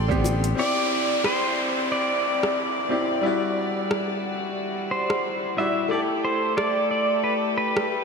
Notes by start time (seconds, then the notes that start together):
Already playing: A1 A4 D5 G5 C6
0.08 D3 B3 C4 G4, kick, shaker
0.24 high bongo, shaker
0.44 closed hi-hat, shaker
0.55 C4 E4 G4 D5, downlifter
0.59 D5
1.24 C5, cross-stick
1.92 D5
2.43 cross-stick
2.89 C4 E4 G4 D5
3.21 G3 E4 F#4
3.26 D5
3.91 cross-stick
4.91 C5
5.10 cross-stick
5.56 G3 E4 F#4 D5 E5
5.88 A3 E4 G4 A4 D5
5.93 A4
6.25 C5
6.57 D5, cross-stick
6.91 D5
7.24 B4
7.58 B4
7.77 cross-stick